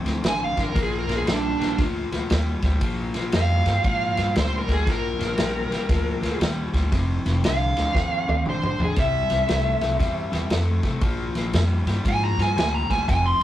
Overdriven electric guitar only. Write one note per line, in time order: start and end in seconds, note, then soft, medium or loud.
0.05 0.22 F2 medium
0.05 0.22 C3 medium
0.23 0.54 F2 medium
0.23 0.54 D3 medium
0.57 0.73 F2 medium
0.57 0.74 D3 medium
0.74 1.05 A#2 medium
0.74 1.05 F3 medium
1.07 1.24 A#2 medium
1.07 1.25 F3 medium
1.26 1.56 A#2 medium
1.26 1.57 G3 medium
1.60 1.76 A#2 medium
1.60 1.76 G3 medium
1.79 2.08 A#2 medium
1.79 2.09 F3 medium
2.12 2.28 A#2 medium
2.12 2.28 F3 medium
2.31 2.60 A#2 medium
2.31 2.60 G3 medium
2.63 2.80 A#2 medium
2.63 2.80 G3 medium
2.83 3.12 A#2 medium
2.83 3.12 F3 medium
3.15 3.31 A#2 medium
3.15 3.32 F3 medium
3.34 3.63 A#2 medium
3.34 3.63 G3 medium
3.67 3.83 A#2 medium
3.67 3.83 G3 medium
3.85 4.14 A#2 medium
3.85 4.14 F3 medium
4.18 4.34 A#2 medium
4.18 4.34 F3 medium
4.36 4.65 A#2 medium
4.36 4.66 G3 medium
4.68 4.85 A#2 medium
4.68 4.85 G3 medium
4.87 5.16 A#2 medium
4.87 5.17 F3 medium
5.19 5.35 A#2 medium
5.19 5.36 F3 medium
5.37 5.67 A#2 medium
5.37 5.68 G3 medium
5.70 5.87 A#2 medium
5.70 5.87 G3 medium
5.89 6.19 A#2 medium
5.89 6.19 F3 medium
6.23 6.38 A#2 medium
6.23 6.39 F3 medium
6.40 6.70 A#2 medium
6.40 6.70 G3 medium
6.73 6.90 A#2 medium
6.73 6.90 G3 medium
6.91 7.21 F2 medium
6.91 7.21 C3 medium
7.25 7.41 F2 medium
7.25 7.41 C3 medium
7.44 7.73 F2 medium
7.44 7.73 D3 medium
7.77 7.93 F2 medium
7.77 7.93 D3 medium
7.95 8.24 F2 medium
7.95 8.24 C3 medium
8.27 8.44 F2 medium
8.27 8.44 C3 medium
8.46 8.76 F2 medium
8.46 8.76 D3 medium
8.78 8.95 F2 medium
8.78 8.95 D3 medium
8.97 9.27 C3 medium
8.97 9.27 G3 medium
9.30 9.46 C3 medium
9.30 9.47 G3 medium
9.48 9.78 C3 medium
9.48 9.78 A3 medium
9.81 9.98 C3 medium
9.81 9.98 A3 medium
9.99 10.29 C3 medium
9.99 10.30 G3 medium
10.32 10.49 C3 medium
10.32 10.49 G3 medium
10.51 10.81 C3 medium
10.51 10.81 A3 medium
10.84 11.00 C3 medium
10.84 11.01 A3 medium
11.03 11.32 A#2 medium
11.03 11.33 F3 medium
11.36 11.52 A#2 medium
11.36 11.53 F3 medium
11.54 11.84 A#2 medium
11.54 11.84 G3 medium
11.87 12.03 A#2 medium
11.87 12.04 G3 medium
12.05 12.35 A#2 medium
12.05 12.35 F3 medium
12.38 12.55 A#2 medium
12.38 12.55 F3 medium
12.56 12.86 A#2 medium
12.56 12.86 G3 medium
12.89 13.06 A#2 medium
12.89 13.06 G3 medium
13.08 13.38 F2 medium
13.08 13.38 C3 medium